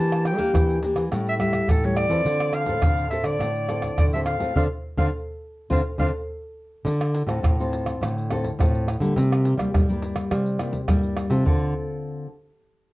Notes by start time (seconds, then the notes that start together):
Already playing: E3 A#3 D4 G4 A5
0.12 pandeiro, tamborim, shaker
0.25 G5, pandeiro, tamborim
0.38 A#3 D4 G4, pandeiro, shaker, surdo
0.54 E3, pandeiro, tamborim, shaker, surdo
0.70 pandeiro, shaker
0.82 A#3 D4 G4, pandeiro, shaker
0.96 E3, pandeiro, tamborim, shaker, surdo
1.11 A2 G3 C#4 E4, pandeiro, tamborim, shaker, surdo
1.27 E5, pandeiro, shaker
1.39 G3 C#4 E4 E5, pandeiro, tamborim, surdo
1.53 pandeiro, tamborim, shaker, surdo
1.68 A2 E3 A4, pandeiro, tamborim, shaker, surdo
1.83 G3 C#4 E4 C#5, pandeiro, shaker
1.96 D5, pandeiro, tamborim, shaker
2.10 E3 C4 F4 A4, pandeiro, shaker, surdo
2.25 D3, pandeiro, shaker, surdo
2.40 pandeiro, tamborim, shaker
2.53 F5, pandeiro, tamborim, shaker
2.67 A2 C4 F4 A4, pandeiro, shaker, surdo
2.82 A2 D3, pandeiro, tamborim, shaker, surdo
2.98 pandeiro, shaker
3.11 C4 F4 A4 E5, pandeiro
3.24 D3 D5, pandeiro, tamborim, shaker, surdo
3.40 A2 D3, pandeiro, tamborim, shaker, surdo
3.56 pandeiro, shaker
3.69 C4 F4 A4, pandeiro, tamborim, shaker
3.82 pandeiro, tamborim, shaker, surdo
3.98 A2 D3 D5, pandeiro, tamborim, shaker, surdo
4.13 C4 F4 A4 E5, pandeiro, shaker
4.26 F5, pandeiro, tamborim
4.39 A2 C4 F4 A4, pandeiro, shaker, surdo
4.55 D3 C4 D4 F4 F5, surdo
4.97 D3 C4 D4 F4 F5, surdo
5.70 D3 C4 D4 F4 F5, surdo
5.98 D3 C4 D4 F4 F5, surdo
6.85 D3, pandeiro, shaker, surdo
7.01 pandeiro, tamborim, shaker
7.15 pandeiro
7.27 A2 C4 F4 A4, pandeiro, tamborim, shaker, surdo
7.43 A2, pandeiro, tamborim, shaker, surdo
7.60 C4 F4 A4, pandeiro, shaker
7.73 pandeiro, shaker
7.86 pandeiro, tamborim, shaker, surdo
8.01 A2 D3, pandeiro, tamborim, shaker, surdo
8.18 pandeiro, shaker
8.30 C4 F4 A4, pandeiro, tamborim, surdo
8.44 pandeiro, shaker, surdo
8.59 A2 C4 F4 A4, pandeiro, tamborim, shaker, surdo
8.75 pandeiro, shaker
8.88 pandeiro, tamborim, shaker
9.00 D3 G3 A#3 E4, pandeiro, shaker, surdo
9.16 C3, pandeiro, shaker, surdo
9.32 pandeiro, tamborim, shaker
9.45 pandeiro, shaker
9.58 G3 A#3 E4, pandeiro, tamborim, shaker, surdo
9.73 G2 G3, pandeiro, tamborim, shaker, surdo
9.89 G3 A#3 E4, pandeiro, shaker
10.02 pandeiro, shaker
10.16 pandeiro, tamborim, shaker, surdo
10.31 C3 G3, pandeiro, tamborim, shaker, surdo
10.46 pandeiro, shaker
10.59 G3 A#3 E4, pandeiro, tamborim
10.73 pandeiro, shaker, surdo
10.88 G2 G3 A#3 E4, pandeiro, tamborim, shaker, surdo
11.04 pandeiro, shaker
11.17 pandeiro, tamborim
11.30 C3 C4 F4 A4, pandeiro, shaker, surdo
11.45 D3 C4 F4 A4, surdo